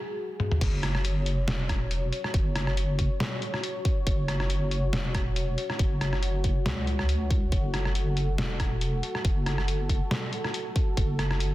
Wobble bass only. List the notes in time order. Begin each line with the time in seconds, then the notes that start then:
0.61 F#1
1.48 E1
2.34 F#1
4.07 F#1
4.93 E1
5.80 F#1
6.66 C#2
7.52 F#1
8.38 E1
9.25 F#1
10.97 F#1